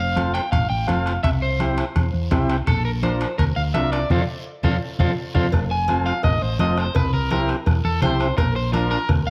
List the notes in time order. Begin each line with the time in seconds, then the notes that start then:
Already playing: F1 F5
0.16 C4 F4 A4, bombo rim, high conga, high timbale, short guiro
0.34 G5, bombo rim, high timbale, short guiro
0.52 A1 F5, bombo low, bombo rim, high conga, high timbale, long guiro
0.70 A1 G5
0.87 F1 C4 F4 A4 F5, bombo rim, high conga, high timbale, short guiro
1.06 bombo rim, high timbale, short guiro
1.23 C2 E5, bombo low, bombo rim, high conga, high timbale, long guiro
1.42 C5
1.59 C4 E4 G4, bombo rim, high conga, high timbale, short guiro
1.78 bombo rim, high timbale, short guiro
1.96 E2, bombo low, bombo rim, high conga, high timbale, long guiro
2.14 E2
2.31 C2 C4 E4 G4, bombo low, bombo rim, high conga, high timbale, low timbale, short guiro
2.49 bombo rim, high timbale, short guiro
2.67 A#1 A4, bombo low, bombo rim, high conga, high timbale, long guiro
2.85 A#4
3.03 D4 F4 A#4 C5, bombo rim, high conga, high timbale, short guiro
3.21 bombo rim, high timbale, short guiro
3.38 D2 A#4, bombo low, bombo rim, high conga, high timbale, long guiro
3.56 D2 F5
3.74 C2 D4 F4 A#4 E5, bombo rim, high conga, high timbale, low timbale, short guiro
3.92 D5, bombo rim, high timbale, short guiro
4.10 F2 C4 F4 A4 C5 F5, bombo low, low conga, high timbale, long guiro
4.63 F2 C4 F4 A4 C5 F5, bombo low, low conga, high timbale, long guiro
4.99 F2 C4 F4 A4 C5 F5, bombo low, low conga, high timbale, long guiro
5.35 F2 C4 F4 A4 C5 F5, bombo low, low conga, high timbale, long guiro
5.52 F1, bombo low, bombo rim, cowbell, high conga, long guiro
5.71 G#5
5.88 C4 F4 A4, bombo rim, cowbell, high conga, short guiro
6.06 F5, bombo rim, short guiro
6.23 A1 D#5, bombo low, bombo rim, cowbell, high conga, long guiro
6.42 A1 C5
6.59 F1 C4 F4 A4 D#5, bombo rim, cowbell, high conga, short guiro
6.78 C5, bombo rim, short guiro
6.95 C2 B4, bombo low, bombo rim, cowbell, high conga, long guiro
7.13 A#4, low conga
7.30 C4 E4 G4 A#4, bombo rim, cowbell, high conga, short guiro
7.49 bombo rim, short guiro
7.66 E2, bombo low, bombo rim, cowbell, high conga, long guiro
7.85 E2 A4
8.02 C2 C4 E4 G4 C5, bombo rim, cowbell, high conga, low conga, short guiro
8.20 bombo rim, short guiro
8.37 A#1 A#4, bombo low, bombo rim, cowbell, long guiro
8.56 C5
8.73 D4 F4 A#4, bombo rim, cowbell, high conga, short guiro
8.91 A#4, bombo rim, short guiro
9.09 D2, bombo low, bombo rim, cowbell, high conga, long guiro
9.27 D2 F5